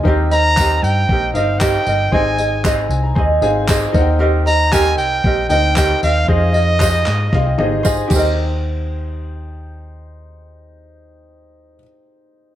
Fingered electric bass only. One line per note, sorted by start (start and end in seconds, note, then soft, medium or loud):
0.05 0.79 D#2 loud
0.83 1.04 G2 medium
1.09 1.30 A#1 medium
1.34 1.77 G1 medium
1.87 2.08 G1 medium
2.12 2.86 G#1 loud
2.89 3.11 C2 medium
3.16 3.38 D#2 medium
3.42 3.85 G#1 medium
3.94 4.98 D#2 loud
4.98 5.20 C2 medium
5.24 5.46 A#1 loud
5.50 5.93 D2 medium
6.03 6.24 D#2 medium
6.28 7.03 F2 loud
7.07 7.28 G#2 medium
7.33 7.54 C2 medium
7.59 8.02 G#1 medium
8.10 11.77 D#2 medium